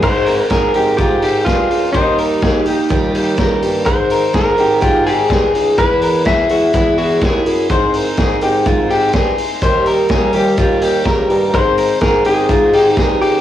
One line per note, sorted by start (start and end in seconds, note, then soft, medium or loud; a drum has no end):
0.02 0.42 G#2 loud
0.02 0.27 G#3 medium
0.02 0.27 C4 medium
0.02 0.27 D#4 medium
0.02 0.25 A#4 medium
0.02 0.27 C5 medium
0.02 0.50 C5 loud
0.02 kick loud
0.02 crash medium
0.26 0.50 C4 soft
0.26 0.51 D#4 soft
0.26 0.51 A#4 soft
0.26 0.51 A#4 medium
0.26 open hi-hat medium
0.50 0.70 G#2 medium
0.50 0.75 G#3 medium
0.50 0.75 C4 medium
0.50 0.75 D#4 medium
0.50 0.75 G#4 medium
0.50 1.00 A#4 medium
0.50 0.73 A#4 medium
0.50 kick loud
0.50 snare loud
0.50 closed hi-hat medium
0.74 0.94 G#2 medium
0.74 0.98 C4 soft
0.74 0.99 D#4 soft
0.74 0.99 G4 medium
0.74 0.99 A#4 medium
0.74 open hi-hat medium
0.97 1.18 G#2 medium
0.97 1.45 G#3 medium
0.97 1.46 C4 medium
0.97 1.47 D#4 medium
0.97 1.23 F4 medium
0.97 1.44 G4 medium
0.97 kick loud
0.97 closed hi-hat medium
1.01 1.48 A#4 medium
1.22 1.42 G#2 medium
1.22 1.46 G4 medium
1.22 open hi-hat medium
1.45 1.66 G2 medium
1.45 1.94 G#3 soft
1.45 1.94 C4 medium
1.45 1.95 D#4 medium
1.45 1.92 F4 medium
1.45 1.92 G#4 medium
1.45 kick loud
1.45 snare medium
1.45 closed hi-hat medium
1.49 1.96 A#4 medium
1.70 1.90 C#2 medium
1.70 open hi-hat medium
1.93 2.34 D#2 medium
1.93 2.89 D#3 medium
1.93 2.40 G3 medium
1.93 2.42 A#3 medium
1.93 3.34 D#4 medium
1.93 2.44 D#4 medium
1.93 2.43 G4 medium
1.93 2.18 C5 loud
1.93 kick medium
1.93 closed hi-hat medium
2.18 2.43 A#4 medium
2.18 open hi-hat medium
2.42 2.62 D#2 medium
2.42 2.66 G3 soft
2.42 2.67 A#3 medium
2.42 2.66 D#4 medium
2.42 2.64 G4 medium
2.42 2.67 G#4 medium
2.42 kick loud
2.42 snare loud
2.42 closed hi-hat medium
2.65 2.89 A#3 soft
2.65 2.90 D#4 medium
2.65 2.90 G4 medium
2.65 2.91 G4 medium
2.65 open hi-hat medium
2.89 3.10 D#2 medium
2.89 5.78 D#3 medium
2.89 3.35 G3 medium
2.89 3.37 A#3 medium
2.89 3.39 D#4 medium
2.89 3.15 F4 medium
2.89 3.39 G4 medium
2.89 kick loud
2.89 closed hi-hat medium
3.14 3.34 D#2 medium
3.14 3.39 G4 medium
3.14 open hi-hat medium
3.37 3.58 C#2 medium
3.37 3.85 G3 medium
3.37 3.86 A#3 medium
3.37 3.85 D#4 medium
3.37 3.87 G4 medium
3.37 3.87 A#4 medium
3.37 kick loud
3.37 snare loud
3.37 closed hi-hat medium
3.62 3.82 G2 medium
3.62 open hi-hat medium
3.85 4.26 G#2 medium
3.85 4.33 G#3 medium
3.85 4.33 C4 medium
3.85 4.34 D#4 medium
3.85 4.35 A#4 medium
3.85 4.35 C5 medium
3.85 4.11 C5 medium
3.85 kick loud
3.85 closed hi-hat medium
4.10 4.35 A#4 medium
4.10 open hi-hat medium
4.33 4.54 G#2 medium
4.33 4.58 G#3 medium
4.33 4.59 C4 medium
4.33 4.58 D#4 medium
4.33 4.59 G#4 medium
4.33 4.82 A#4 medium
4.33 4.56 A#4 medium
4.33 kick loud
4.33 snare loud
4.33 closed hi-hat medium
4.57 4.78 G#2 medium
4.57 4.81 C4 soft
4.57 4.81 D#4 soft
4.57 4.83 G4 medium
4.57 4.82 A#4 medium
4.57 open hi-hat medium
4.81 5.02 G#2 medium
4.81 5.28 G#3 medium
4.81 5.29 C4 medium
4.81 5.30 D#4 medium
4.81 5.07 F4 medium
4.81 5.06 G4 medium
4.81 5.31 A#4 medium
4.81 kick medium
4.81 closed hi-hat medium
5.06 5.26 G#2 medium
5.06 5.31 G4 medium
5.06 5.78 G#4 medium
5.06 open hi-hat medium
5.29 5.50 G2 medium
5.29 5.79 G#3 medium
5.29 5.78 C4 medium
5.29 5.79 D#4 medium
5.29 5.76 G#4 medium
5.29 5.79 A#4 medium
5.29 kick loud
5.29 snare loud
5.29 closed hi-hat medium
5.54 5.74 C#2 medium
5.54 open hi-hat medium
5.78 6.26 E2 medium
5.78 6.18 E2 medium
5.78 6.27 E3 medium
5.78 6.25 G#3 medium
5.78 6.26 B3 medium
5.78 6.26 E4 medium
5.78 6.28 G#4 medium
5.78 6.26 B4 medium
5.78 6.02 B4 medium
5.78 kick medium
5.78 closed hi-hat medium
6.01 6.26 A#4 medium
6.01 open hi-hat medium
6.25 6.46 E2 medium
6.25 6.50 G#3 soft
6.25 6.50 B3 medium
6.25 6.49 E4 medium
6.25 6.51 G#4 medium
6.25 6.48 G#4 medium
6.25 7.18 E5 medium
6.25 kick loud
6.25 snare loud
6.25 closed hi-hat medium
6.49 6.70 E2 medium
6.49 6.73 G#3 soft
6.49 6.73 B3 soft
6.49 6.74 E4 soft
6.49 6.74 F#4 medium
6.49 6.74 G#4 medium
6.49 open hi-hat medium
6.73 7.22 E2 medium
6.73 6.94 E2 medium
6.73 7.22 E3 medium
6.73 7.21 G#3 medium
6.73 7.21 B3 medium
6.73 6.97 E4 medium
6.73 7.23 E4 medium
6.73 7.24 G#4 medium
6.73 kick loud
6.73 closed hi-hat medium
6.98 7.18 E2 medium
6.98 7.22 F#4 medium
6.98 open hi-hat medium
7.21 7.42 D#2 medium
7.21 7.68 G#3 medium
7.21 7.70 B3 medium
7.21 7.71 E4 medium
7.21 7.67 G#4 medium
7.21 7.71 G#4 medium
7.21 kick loud
7.21 snare medium
7.21 closed hi-hat medium
7.45 7.65 F#2 medium
7.45 open hi-hat medium
7.69 8.09 G#2 loud
7.69 8.16 G#3 medium
7.69 8.17 C4 medium
7.69 8.19 D#4 medium
7.69 8.20 A#4 medium
7.69 7.95 C5 medium
7.69 kick loud
7.69 closed hi-hat medium
7.93 8.18 A#4 medium
7.93 open hi-hat medium
8.17 8.38 G#2 medium
8.17 8.42 G#3 medium
8.17 8.42 C4 medium
8.17 8.42 D#4 medium
8.17 8.42 G#4 medium
8.17 8.40 A#4 medium
8.17 kick loud
8.17 snare loud
8.17 closed hi-hat medium
8.41 8.62 G#2 medium
8.41 8.66 C4 soft
8.41 8.66 D#4 medium
8.41 8.67 G4 medium
8.41 8.66 A#4 medium
8.41 open hi-hat medium
8.66 8.86 G#2 medium
8.66 9.13 G#3 medium
8.66 9.14 C4 medium
8.66 9.16 D#4 medium
8.66 8.91 F4 medium
8.66 9.17 A#4 medium
8.66 kick loud
8.66 closed hi-hat medium
8.90 9.10 G#2 medium
8.90 9.14 G4 medium
8.90 open hi-hat medium
9.13 9.33 G2 medium
9.13 9.62 G#3 medium
9.13 9.62 C4 medium
9.13 9.63 D#4 medium
9.13 9.59 G#4 medium
9.13 kick loud
9.13 snare loud
9.13 closed hi-hat medium
9.17 9.63 A#4 medium
9.38 open hi-hat medium
9.62 10.01 D#2 medium
9.62 10.57 D#3 medium
9.62 10.09 G3 medium
9.62 10.09 A#3 medium
9.62 10.10 G4 medium
9.62 10.12 A#4 medium
9.62 9.86 C5 loud
9.62 kick loud
9.62 closed hi-hat medium
9.86 10.10 A#4 medium
9.86 open hi-hat medium
10.09 10.29 D#2 medium
10.09 10.34 G3 medium
10.09 10.34 A#3 medium
10.09 10.34 G4 medium
10.09 10.34 G#4 medium
10.09 10.32 A#4 medium
10.09 kick loud
10.09 snare loud
10.09 closed hi-hat medium
10.33 10.54 D#2 medium
10.33 10.57 G3 soft
10.33 10.58 G4 medium
10.33 10.58 G4 soft
10.33 10.58 A#4 medium
10.33 open hi-hat medium
10.57 10.78 D#2 medium
10.57 13.41 D#3 medium
10.57 11.05 G3 medium
10.57 11.05 A#3 medium
10.57 10.82 F4 medium
10.57 11.06 G4 medium
10.57 11.08 A#4 medium
10.57 kick loud
10.57 closed hi-hat medium
10.82 11.01 D#2 medium
10.82 11.06 G4 medium
10.82 open hi-hat medium
11.05 11.25 C#2 medium
11.05 11.54 G3 medium
11.05 11.53 A#3 medium
11.05 11.55 G4 medium
11.05 11.51 A#4 medium
11.05 11.55 A#4 medium
11.05 kick loud
11.05 snare loud
11.05 closed hi-hat medium
11.30 11.50 G2 medium
11.30 open hi-hat medium
11.54 11.93 G#2 loud
11.54 12.00 G#3 medium
11.54 12.01 C4 medium
11.54 12.03 D#4 medium
11.54 12.04 A#4 medium
11.54 11.78 C5 medium
11.54 12.01 C5 loud
11.54 kick loud
11.54 closed hi-hat medium
11.77 12.02 A#4 medium
11.77 open hi-hat medium
12.01 12.21 G#2 loud
12.01 12.25 G#3 medium
12.01 12.25 D#4 medium
12.01 12.26 G#4 medium
12.01 12.26 A#4 medium
12.01 12.24 A#4 medium
12.01 kick loud
12.01 snare loud
12.01 closed hi-hat medium
12.24 12.45 G#2 medium
12.24 12.49 C4 soft
12.24 12.49 D#4 soft
12.24 12.50 G4 medium
12.24 12.92 G#4 medium
12.24 12.49 A#4 medium
12.24 open hi-hat medium
12.49 12.69 G#2 medium
12.49 12.95 G#3 medium
12.49 12.97 C4 medium
12.49 12.98 D#4 medium
12.49 12.74 F4 medium
12.49 12.99 A#4 medium
12.49 kick loud
12.49 closed hi-hat medium
12.73 12.93 G#2 loud
12.73 12.98 G4 medium
12.73 open hi-hat medium
12.92 13.21 G4 medium
12.96 13.17 G2 medium
12.96 13.41 G#3 medium
12.96 13.41 C4 medium
12.96 13.41 D#4 medium
12.96 13.41 G#4 medium
12.96 13.41 A#4 medium
12.96 kick loud
12.96 snare medium
12.96 closed hi-hat medium
13.21 13.41 C#2 medium
13.21 13.41 G4 medium
13.21 open hi-hat medium